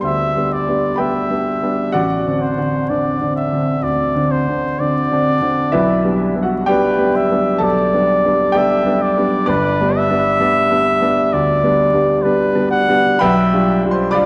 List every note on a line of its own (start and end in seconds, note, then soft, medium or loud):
0.00 1.98 G1 soft
0.00 0.36 D2 soft
0.00 0.36 G3 soft
0.00 0.37 B3 soft
0.00 0.37 D4 soft
0.00 1.99 G4 medium
0.00 1.99 A4 soft
0.00 0.98 B4 medium
0.00 0.95 C5 soft
0.00 1.93 D5 soft
0.00 0.98 G5 medium
0.00 1.99 A5 medium
0.00 0.96 B5 medium
0.00 0.99 C6 medium
0.05 0.54 E5 medium
0.36 0.66 G3 soft
0.36 0.66 B3 soft
0.36 0.66 D4 soft
0.53 1.01 D5 soft
0.68 0.97 G3 soft
0.68 0.97 B3 soft
0.68 0.98 D4 soft
0.96 1.28 G3 soft
0.96 1.29 B3 soft
0.96 1.29 D4 soft
0.96 1.91 B4 soft
0.96 1.95 E5 medium
0.96 1.91 G5 medium
0.96 1.94 B5 medium
1.30 1.59 G3 soft
1.30 1.60 B3 soft
1.30 1.60 D4 soft
1.62 1.92 G3 soft
1.62 1.92 B3 soft
1.62 1.93 D4 soft
1.92 2.27 A1 soft
1.92 5.70 F#4 medium
1.92 5.69 D5 medium
1.92 2.43 D5 soft
1.92 5.73 F#5 medium
2.26 2.56 D3 soft
2.26 2.56 C4 soft
2.26 2.57 D4 soft
2.41 2.91 C5 soft
2.58 2.87 D3 soft
2.58 2.87 C4 soft
2.58 2.87 D4 soft
2.90 3.18 D3 soft
2.90 3.19 C4 soft
2.90 3.19 D4 soft
2.90 3.36 D5 medium
3.22 3.50 D3 soft
3.22 3.50 C4 soft
3.22 3.50 D4 soft
3.36 3.85 E5 medium
3.52 3.81 D3 soft
3.52 3.82 C4 soft
3.52 3.82 D4 soft
3.82 4.14 D2 soft
3.82 4.33 D5 medium
4.15 4.45 D3 soft
4.15 4.44 C4 soft
4.15 4.45 D4 soft
4.31 4.81 C5 medium
4.48 4.77 D3 soft
4.48 4.77 C4 soft
4.48 4.77 D4 soft
4.79 5.09 D3 soft
4.79 5.09 C4 soft
4.79 5.09 D4 soft
4.79 6.41 D5 medium
5.11 5.40 D3 soft
5.11 5.40 C4 soft
5.11 5.41 D4 soft
5.42 5.71 D3 soft
5.42 5.71 C4 soft
5.42 5.71 D4 soft
5.72 6.05 B1 medium
5.72 6.41 E4 medium
5.72 6.41 B4 medium
5.72 6.44 E5 medium
6.04 6.33 G3 soft
6.04 6.34 B3 soft
6.04 6.34 D4 soft
6.35 6.65 G3 soft
6.35 6.65 B3 soft
6.35 6.65 D4 soft
6.43 6.66 F#4 soft
6.43 6.68 F#5 medium
6.66 6.96 G3 soft
6.66 6.96 B3 soft
6.66 6.97 D4 medium
6.66 7.59 G4 medium
6.66 7.17 B4 medium
6.66 7.58 D5 medium
6.66 7.62 G5 medium
6.97 7.27 G3 soft
6.97 7.28 B3 soft
6.97 7.28 D4 soft
7.16 7.65 E5 medium
7.31 7.60 G3 soft
7.31 7.60 B3 soft
7.31 7.60 D4 medium
7.58 7.93 B1 soft
7.58 8.51 A4 medium
7.58 8.54 A5 medium
7.64 8.59 D5 medium
7.93 8.22 G3 soft
7.93 8.22 B3 soft
7.93 8.23 D4 soft
8.25 8.53 G3 soft
8.25 8.53 B3 soft
8.25 8.53 D4 soft
8.52 8.83 G3 soft
8.52 8.83 B3 soft
8.52 8.83 D4 soft
8.52 9.43 G4 medium
8.52 9.43 D5 medium
8.52 9.46 G5 medium
8.57 9.03 E5 medium
8.84 9.13 G3 soft
8.84 9.14 B3 soft
8.84 9.14 D4 medium
9.02 9.51 D5 medium
9.17 9.45 G3 medium
9.17 9.45 B3 medium
9.17 9.45 D4 medium
9.46 9.79 G1 medium
9.46 9.79 D4 medium
9.46 13.17 B4 medium
9.46 9.98 B4 medium
9.46 13.20 D5 loud
9.81 10.08 G3 soft
9.81 10.08 B3 soft
9.81 10.08 D4 medium
9.96 11.34 E5 medium
10.10 10.37 G3 soft
10.10 10.37 B3 soft
10.10 10.37 D4 medium
10.40 10.67 G3 soft
10.40 10.67 B3 soft
10.40 10.68 D4 medium
10.70 10.98 G3 soft
10.70 10.98 B3 medium
10.70 10.98 D4 soft
11.01 11.29 G3 soft
11.01 11.29 B3 soft
11.01 11.30 D4 medium
11.33 11.63 D2 medium
11.33 12.24 D5 medium
11.63 11.90 G3 soft
11.63 11.90 B3 soft
11.63 11.91 D4 medium
11.93 12.20 G3 medium
11.93 12.21 B3 soft
11.93 12.21 D4 soft
12.22 12.52 G3 medium
12.22 12.52 B3 soft
12.22 12.52 D4 medium
12.22 12.70 B4 medium
12.54 12.85 G3 medium
12.54 12.85 B3 medium
12.54 12.85 D4 medium
12.71 13.23 F#5 medium
12.88 13.18 G3 medium
12.88 13.19 B3 medium
12.88 13.19 D4 medium
13.19 13.53 B1 medium
13.19 13.87 B4 medium
13.19 13.87 E5 medium
13.19 13.87 G5 medium
13.19 13.91 B5 loud
13.53 13.81 G3 soft
13.53 13.81 D4 soft
13.53 13.81 F4 medium
13.84 14.11 G3 soft
13.84 14.11 D4 soft
13.84 14.12 F4 soft
13.91 14.13 C5 medium
13.91 14.14 C6 medium
14.11 14.26 G3 medium
14.11 14.26 D4 medium
14.11 14.26 F4 medium
14.11 14.26 D5 medium
14.11 14.26 B5 medium
14.11 14.26 D6 loud